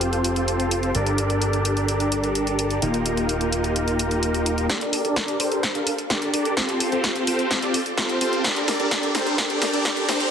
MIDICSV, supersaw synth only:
0, 0, Header, 1, 2, 480
1, 0, Start_track
1, 0, Key_signature, -2, "minor"
1, 0, Tempo, 468750
1, 969, Time_signature, 4, 2, 24, 8
1, 10555, End_track
2, 0, Start_track
2, 0, Title_t, "Supersaw synth"
2, 0, Program_c, 0, 81
2, 0, Note_on_c, 0, 60, 77
2, 0, Note_on_c, 0, 65, 69
2, 0, Note_on_c, 0, 67, 69
2, 0, Note_on_c, 0, 69, 67
2, 0, Note_on_c, 0, 72, 81
2, 940, Note_off_c, 0, 67, 0
2, 941, Note_off_c, 0, 60, 0
2, 941, Note_off_c, 0, 65, 0
2, 941, Note_off_c, 0, 69, 0
2, 941, Note_off_c, 0, 72, 0
2, 971, Note_on_c, 0, 62, 73
2, 971, Note_on_c, 0, 67, 70
2, 971, Note_on_c, 0, 69, 69
2, 971, Note_on_c, 0, 70, 70
2, 971, Note_on_c, 0, 74, 81
2, 2861, Note_off_c, 0, 62, 0
2, 2861, Note_off_c, 0, 67, 0
2, 2861, Note_off_c, 0, 69, 0
2, 2861, Note_off_c, 0, 70, 0
2, 2861, Note_off_c, 0, 74, 0
2, 2890, Note_on_c, 0, 58, 75
2, 2890, Note_on_c, 0, 63, 68
2, 2890, Note_on_c, 0, 65, 70
2, 2890, Note_on_c, 0, 67, 67
2, 2890, Note_on_c, 0, 70, 84
2, 4781, Note_off_c, 0, 58, 0
2, 4781, Note_off_c, 0, 63, 0
2, 4781, Note_off_c, 0, 65, 0
2, 4781, Note_off_c, 0, 67, 0
2, 4781, Note_off_c, 0, 70, 0
2, 4808, Note_on_c, 0, 62, 84
2, 4808, Note_on_c, 0, 67, 79
2, 4809, Note_on_c, 0, 69, 77
2, 4809, Note_on_c, 0, 74, 93
2, 5140, Note_off_c, 0, 62, 0
2, 5140, Note_off_c, 0, 67, 0
2, 5140, Note_off_c, 0, 69, 0
2, 5140, Note_off_c, 0, 74, 0
2, 5168, Note_on_c, 0, 62, 100
2, 5168, Note_on_c, 0, 67, 90
2, 5168, Note_on_c, 0, 69, 88
2, 5168, Note_on_c, 0, 70, 88
2, 5168, Note_on_c, 0, 74, 109
2, 5500, Note_off_c, 0, 62, 0
2, 5500, Note_off_c, 0, 67, 0
2, 5500, Note_off_c, 0, 69, 0
2, 5500, Note_off_c, 0, 70, 0
2, 5500, Note_off_c, 0, 74, 0
2, 5528, Note_on_c, 0, 67, 77
2, 5529, Note_on_c, 0, 62, 84
2, 5529, Note_on_c, 0, 69, 78
2, 5529, Note_on_c, 0, 70, 77
2, 5529, Note_on_c, 0, 72, 91
2, 5860, Note_off_c, 0, 62, 0
2, 5860, Note_off_c, 0, 67, 0
2, 5860, Note_off_c, 0, 69, 0
2, 5860, Note_off_c, 0, 70, 0
2, 5860, Note_off_c, 0, 72, 0
2, 5888, Note_on_c, 0, 69, 82
2, 5889, Note_on_c, 0, 62, 89
2, 5889, Note_on_c, 0, 67, 83
2, 5889, Note_on_c, 0, 70, 84
2, 5889, Note_on_c, 0, 77, 99
2, 6055, Note_off_c, 0, 62, 0
2, 6055, Note_off_c, 0, 67, 0
2, 6055, Note_off_c, 0, 69, 0
2, 6055, Note_off_c, 0, 70, 0
2, 6055, Note_off_c, 0, 77, 0
2, 6248, Note_on_c, 0, 67, 80
2, 6248, Note_on_c, 0, 69, 84
2, 6248, Note_on_c, 0, 70, 81
2, 6248, Note_on_c, 0, 74, 99
2, 6249, Note_on_c, 0, 62, 89
2, 6460, Note_off_c, 0, 62, 0
2, 6460, Note_off_c, 0, 67, 0
2, 6460, Note_off_c, 0, 69, 0
2, 6460, Note_off_c, 0, 70, 0
2, 6460, Note_off_c, 0, 74, 0
2, 6487, Note_on_c, 0, 62, 91
2, 6487, Note_on_c, 0, 67, 89
2, 6487, Note_on_c, 0, 69, 86
2, 6487, Note_on_c, 0, 70, 87
2, 6487, Note_on_c, 0, 74, 104
2, 6699, Note_off_c, 0, 62, 0
2, 6699, Note_off_c, 0, 67, 0
2, 6699, Note_off_c, 0, 69, 0
2, 6699, Note_off_c, 0, 70, 0
2, 6699, Note_off_c, 0, 74, 0
2, 6727, Note_on_c, 0, 60, 85
2, 6727, Note_on_c, 0, 65, 75
2, 6727, Note_on_c, 0, 72, 96
2, 7059, Note_off_c, 0, 60, 0
2, 7059, Note_off_c, 0, 65, 0
2, 7059, Note_off_c, 0, 72, 0
2, 7088, Note_on_c, 0, 60, 101
2, 7088, Note_on_c, 0, 65, 91
2, 7088, Note_on_c, 0, 67, 92
2, 7088, Note_on_c, 0, 69, 92
2, 7088, Note_on_c, 0, 72, 114
2, 7420, Note_off_c, 0, 60, 0
2, 7420, Note_off_c, 0, 65, 0
2, 7420, Note_off_c, 0, 67, 0
2, 7420, Note_off_c, 0, 69, 0
2, 7420, Note_off_c, 0, 72, 0
2, 7448, Note_on_c, 0, 60, 87
2, 7448, Note_on_c, 0, 65, 79
2, 7448, Note_on_c, 0, 67, 77
2, 7448, Note_on_c, 0, 69, 80
2, 7448, Note_on_c, 0, 72, 97
2, 7780, Note_off_c, 0, 60, 0
2, 7780, Note_off_c, 0, 65, 0
2, 7780, Note_off_c, 0, 67, 0
2, 7780, Note_off_c, 0, 69, 0
2, 7780, Note_off_c, 0, 72, 0
2, 7808, Note_on_c, 0, 60, 93
2, 7808, Note_on_c, 0, 65, 85
2, 7808, Note_on_c, 0, 67, 86
2, 7808, Note_on_c, 0, 69, 84
2, 7808, Note_on_c, 0, 74, 99
2, 7975, Note_off_c, 0, 60, 0
2, 7975, Note_off_c, 0, 65, 0
2, 7975, Note_off_c, 0, 67, 0
2, 7975, Note_off_c, 0, 69, 0
2, 7975, Note_off_c, 0, 74, 0
2, 8167, Note_on_c, 0, 60, 91
2, 8167, Note_on_c, 0, 65, 85
2, 8167, Note_on_c, 0, 69, 81
2, 8168, Note_on_c, 0, 67, 86
2, 8168, Note_on_c, 0, 72, 101
2, 8379, Note_off_c, 0, 60, 0
2, 8379, Note_off_c, 0, 65, 0
2, 8379, Note_off_c, 0, 67, 0
2, 8379, Note_off_c, 0, 69, 0
2, 8379, Note_off_c, 0, 72, 0
2, 8408, Note_on_c, 0, 60, 98
2, 8408, Note_on_c, 0, 65, 88
2, 8408, Note_on_c, 0, 67, 90
2, 8408, Note_on_c, 0, 69, 89
2, 8408, Note_on_c, 0, 72, 110
2, 8620, Note_off_c, 0, 60, 0
2, 8620, Note_off_c, 0, 65, 0
2, 8620, Note_off_c, 0, 67, 0
2, 8620, Note_off_c, 0, 69, 0
2, 8620, Note_off_c, 0, 72, 0
2, 8647, Note_on_c, 0, 62, 82
2, 8647, Note_on_c, 0, 67, 72
2, 8648, Note_on_c, 0, 74, 89
2, 8979, Note_off_c, 0, 62, 0
2, 8979, Note_off_c, 0, 67, 0
2, 8980, Note_off_c, 0, 74, 0
2, 9006, Note_on_c, 0, 74, 104
2, 9007, Note_on_c, 0, 62, 97
2, 9007, Note_on_c, 0, 67, 86
2, 9007, Note_on_c, 0, 69, 89
2, 9007, Note_on_c, 0, 70, 85
2, 9339, Note_off_c, 0, 62, 0
2, 9339, Note_off_c, 0, 67, 0
2, 9339, Note_off_c, 0, 69, 0
2, 9339, Note_off_c, 0, 70, 0
2, 9339, Note_off_c, 0, 74, 0
2, 9367, Note_on_c, 0, 62, 79
2, 9367, Note_on_c, 0, 67, 73
2, 9367, Note_on_c, 0, 69, 74
2, 9367, Note_on_c, 0, 70, 73
2, 9367, Note_on_c, 0, 72, 86
2, 9589, Note_off_c, 0, 62, 0
2, 9589, Note_off_c, 0, 67, 0
2, 9589, Note_off_c, 0, 69, 0
2, 9589, Note_off_c, 0, 70, 0
2, 9589, Note_off_c, 0, 72, 0
2, 9607, Note_on_c, 0, 67, 75
2, 9607, Note_on_c, 0, 69, 75
2, 9607, Note_on_c, 0, 70, 79
2, 9607, Note_on_c, 0, 74, 91
2, 9608, Note_on_c, 0, 62, 86
2, 9939, Note_off_c, 0, 67, 0
2, 9939, Note_off_c, 0, 69, 0
2, 9939, Note_off_c, 0, 70, 0
2, 9939, Note_off_c, 0, 74, 0
2, 9940, Note_off_c, 0, 62, 0
2, 9967, Note_on_c, 0, 62, 92
2, 9967, Note_on_c, 0, 67, 84
2, 9967, Note_on_c, 0, 69, 81
2, 9967, Note_on_c, 0, 70, 81
2, 9967, Note_on_c, 0, 74, 103
2, 10299, Note_off_c, 0, 62, 0
2, 10299, Note_off_c, 0, 67, 0
2, 10299, Note_off_c, 0, 69, 0
2, 10299, Note_off_c, 0, 70, 0
2, 10299, Note_off_c, 0, 74, 0
2, 10327, Note_on_c, 0, 72, 91
2, 10328, Note_on_c, 0, 62, 77
2, 10328, Note_on_c, 0, 67, 71
2, 10328, Note_on_c, 0, 69, 72
2, 10328, Note_on_c, 0, 70, 75
2, 10549, Note_off_c, 0, 62, 0
2, 10549, Note_off_c, 0, 67, 0
2, 10549, Note_off_c, 0, 69, 0
2, 10549, Note_off_c, 0, 70, 0
2, 10549, Note_off_c, 0, 72, 0
2, 10555, End_track
0, 0, End_of_file